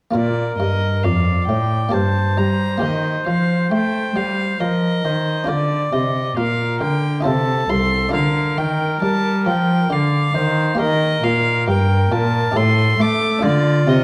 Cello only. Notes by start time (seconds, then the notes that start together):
0.14 A#2
0.59 G2
1.04 F2
1.49 A2
1.94 G2
2.39 G3
2.83 D#3
3.27 F3
3.72 A3
4.16 G3
4.61 F3
5.05 D#3
5.49 D3
5.93 C3
6.37 A#2
6.81 D3
7.25 C3
7.69 C2
8.14 D3
8.58 D#3
9.02 G3
9.46 F3
9.90 D3
10.34 D#3
10.79 D#3
11.23 A#2
11.67 G2
12.12 A#2
12.55 A2
12.99 A3
13.44 D3
13.88 C3